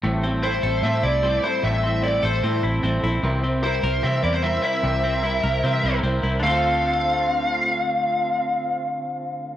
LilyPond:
<<
  \new Staff \with { instrumentName = "Lead electric guitar" } { \time 4/4 \key d \minor \tempo 4 = 150 r4 c''4 e''8 d''4 c''8 | e''4 d''8 c''4 r4. | r4 c''4 e''8 d''16 c''16 e''8 e''8~ | e''2. r4 |
f''1~ | f''1 | }
  \new Staff \with { instrumentName = "Clean electric guitar" } { \time 4/4 \key d \minor a,8 c'8 e'8 a'8 c'8 e'8 c'8 e'8 | a,8 c'8 e'8 a'8 c'8 e'8 c'8 e'8 | c8 c'8 e'8 bes'8 c'8 e'8 c'8 e'8 | c8 c'8 e'8 bes'8 c'8 e'8 c'8 e'8 |
<d a c' f' a'>1~ | <d a c' f' a'>1 | }
  \new Staff \with { instrumentName = "Clean electric guitar" } { \time 4/4 \key d \minor <a, e g c' e' a'>8 <g c' e' a'>8 <g c' e' a'>8 <g c' e' a'>8 <a, e g c' e' a'>8 <g c' e' a'>8 <g c' e' a'>8 <g c' e' a'>8 | <a, e g c' e' a'>8 <g c' e' a'>8 <g c' e' a'>8 <g c' e' a'>8 <a, e g c' e' a'>8 <g c' e' a'>8 <g c' e' a'>8 <g c' e' a'>8 | <c e g c' e' bes'>8 <g c' e' bes'>8 <g c' e' bes'>8 <g c' e' bes'>8 <c e g c' e' bes'>8 <g c' e' bes'>8 <g c' e' bes'>8 <g c' e' bes'>8 | <c e g c' e' bes'>8 <g c' e' bes'>8 <g c' e' bes'>8 <g c' e' bes'>8 <c e g c' e' bes'>8 <g c' e' bes'>8 <g c' e' bes'>8 <g c' e' bes'>8 |
<d a c' f' a'>1~ | <d a c' f' a'>1 | }
  \new Staff \with { instrumentName = "Fingered electric bass" } { \clef bass \time 4/4 \key d \minor a,,4. a,,8 a,8 c,4 r8 | a,,4. a,,8 a,8 a,,8 a,,8 bes,,8 | c,4. c,8 c8 e,4 r8 | c,4. c,8 c8 c,8 c,8 c,8 |
d,1~ | d,1 | }
>>